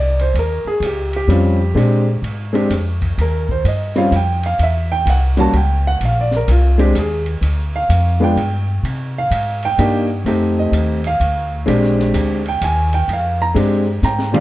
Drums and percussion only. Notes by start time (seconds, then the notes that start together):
0.19 ride
0.35 ride
0.82 hi-hat pedal, ride
1.13 ride
1.30 hi-hat pedal, ride
1.77 ride
2.24 ride
2.55 ride
2.70 snare, hi-hat pedal, ride
3.02 kick, ride
3.18 ride
3.49 kick
3.65 hi-hat pedal, ride
3.96 ride
4.12 hi-hat pedal, ride
4.43 ride
4.59 ride
5.07 hi-hat pedal, ride
5.37 ride
5.53 ride
6.01 ride
6.31 snare
6.48 hi-hat pedal, ride
6.79 ride
6.95 hi-hat pedal, ride
7.26 ride
7.43 ride
7.90 hi-hat pedal, ride
8.37 ride
8.85 ride
9.31 hi-hat pedal, ride
9.63 ride
9.79 hi-hat pedal, ride
10.26 ride
10.73 hi-hat pedal, ride
11.04 ride
11.21 ride
11.68 ride
11.83 snare
11.99 snare
12.14 hi-hat pedal, ride
12.46 ride
12.62 hi-hat pedal, ride
12.93 ride
13.09 ride
13.56 ride
14.03 snare, hi-hat pedal
14.19 snare
14.34 mid tom